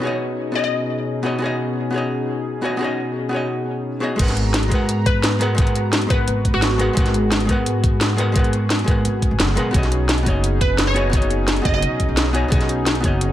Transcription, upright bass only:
4.19 4.70 G#1 loud
4.71 6.09 G#2 loud
6.10 6.26 G#2 loud
6.28 6.52 G#1 medium
6.54 6.87 G#1 medium
6.97 7.48 G#1 loud
7.49 8.86 G#2 loud
8.88 9.03 G#2 loud
9.05 9.30 G#1 medium
9.31 9.39 G#1 medium
9.40 9.55 F#1 medium
9.57 9.73 A#1 loud
9.74 10.25 B1 loud
10.26 11.64 F#1 loud
11.65 11.81 F#1 loud
11.83 12.07 B1 medium
12.09 12.42 B1 medium
12.52 13.03 B1 loud
13.04 13.32 F#1 loud

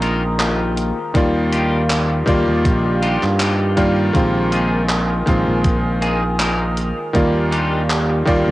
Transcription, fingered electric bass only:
0.00 0.91 A#1 loud
1.15 2.21 D#2 loud
2.27 2.43 D#2 medium
2.48 2.64 D#2 loud
2.65 3.16 A#1 loud
3.23 4.09 G2 medium
4.15 5.21 A#1 loud
5.27 5.43 A#1 medium
5.48 6.91 A#1 loud
7.15 8.22 D#2 loud
8.27 8.43 D#2 medium
8.48 8.51 D#2 loud

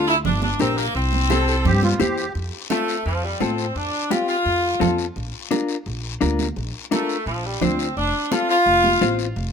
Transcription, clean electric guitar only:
0.00 0.14 D4 medium
0.00 0.15 F4 medium
0.00 0.15 A4 medium
0.60 0.85 D4 medium
0.60 0.85 G4 medium
0.60 0.85 A#4 medium
1.30 1.55 E4 medium
1.30 1.55 G4 medium
1.30 1.55 C5 medium
2.00 2.25 E4 medium
2.00 2.25 G4 medium
2.00 2.25 C5 medium
2.71 2.95 C4 medium
2.71 2.96 F4 medium
2.71 2.96 A4 medium
3.40 3.65 C4 medium
3.40 3.65 F4 medium
3.40 3.66 A4 medium
4.10 4.35 C4 medium
4.10 4.35 F4 medium
4.10 4.36 G4 medium
4.80 5.05 C4 medium
4.80 5.05 F4 medium
4.80 5.06 A4 medium
5.51 5.76 D4 medium
5.51 5.76 F4 medium
5.51 5.76 A#4 medium
6.21 6.46 D4 medium
6.21 6.46 F4 medium
6.21 6.46 A#4 loud
6.91 7.16 D4 medium
6.91 7.16 F4 medium
6.91 7.16 A#4 medium
7.62 7.86 D4 medium
7.62 7.87 F4 medium
7.62 7.87 C5 medium
8.31 8.56 C4 medium
8.31 8.57 F4 medium
8.31 8.57 A4 medium
9.01 9.26 C4 medium
9.01 9.26 F4 medium
9.01 9.27 C5 loud

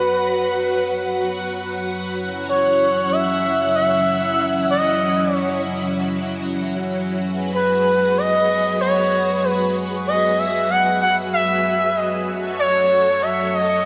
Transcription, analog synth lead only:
0.00 1.23 B4 loud
2.49 3.14 C#5 loud
3.12 3.75 E5 loud
3.75 4.66 E5 loud
4.70 5.34 D#5 loud
5.34 5.61 C#5 loud
7.54 8.19 B4 loud
8.18 8.80 D#5 loud
8.81 9.46 C#5 loud
9.44 9.75 B4 medium
10.07 10.40 D#5 loud
10.39 10.70 E5 loud
10.70 11.00 F#5 loud
11.02 11.16 F#5 loud
11.33 11.98 E5 loud
11.97 12.28 D#5 medium
12.59 13.24 C#5 loud
13.22 13.56 E5 loud
13.54 13.85 D#5 loud

